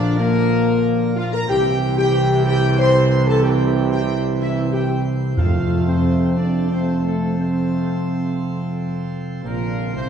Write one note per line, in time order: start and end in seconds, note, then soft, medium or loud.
0.00 1.17 A#1 loud
0.00 1.45 A#2 medium
0.00 1.30 D3 loud
0.00 1.30 F3 loud
0.00 1.45 F3 medium
0.00 0.17 D4 loud
0.00 1.45 D4 medium
0.00 1.45 A#4 medium
0.00 0.16 D5 loud
0.17 1.13 A#3 loud
0.17 1.11 A#4 loud
1.16 1.31 F4 loud
1.16 1.23 F5 loud
1.32 1.40 A#4 loud
1.32 1.47 A#5 loud
1.47 5.34 C2 loud
1.47 5.36 C3 loud
1.47 5.37 C3 medium
1.47 5.33 E3 loud
1.47 5.38 E3 medium
1.47 5.37 C4 medium
1.47 5.38 G4 medium
1.47 1.94 G4 loud
1.47 1.93 G5 loud
1.97 2.42 G4 loud
1.97 2.42 G5 loud
2.45 2.76 G4 loud
2.45 2.75 G5 loud
2.77 3.24 C5 loud
2.77 3.23 C6 loud
3.27 3.42 A4 loud
3.27 3.42 A5 loud
3.42 3.91 G4 loud
3.42 3.87 G5 loud
3.90 4.26 G4 loud
3.90 4.25 G5 loud
4.39 4.70 E4 loud
4.39 4.70 E5 loud
4.72 5.03 G4 loud
4.72 5.03 G5 medium
5.37 9.07 F2 medium
5.37 6.33 F2 loud
5.37 6.66 C3 medium
5.37 9.41 C3 medium
5.37 9.43 F3 medium
5.37 6.66 A3 medium
5.37 9.41 C4 medium
5.37 5.84 F4 loud
5.37 9.45 A4 medium
5.37 5.83 F5 loud
5.86 6.34 C4 medium
5.86 6.33 C5 medium
6.37 6.70 D4 medium
6.37 6.68 D5 medium
6.69 7.34 C3 medium
6.69 7.34 A3 medium
6.69 7.01 C4 medium
6.69 7.02 C5 medium
7.04 7.36 A3 medium
7.04 7.36 A4 medium
7.38 9.07 C3 medium
7.38 9.07 A3 medium
7.38 8.71 C4 medium
7.38 8.71 C5 medium
9.43 9.95 A#1 medium
9.43 9.91 A#2 medium
9.43 10.09 D3 medium
9.43 10.09 F3 medium
9.43 9.90 A#3 medium
9.43 10.09 C4 medium
9.43 9.91 A#4 loud
9.43 10.09 C5 medium
9.93 10.09 C2 medium
9.93 10.09 C3 medium
9.93 10.09 C4 medium
9.93 10.09 C5 medium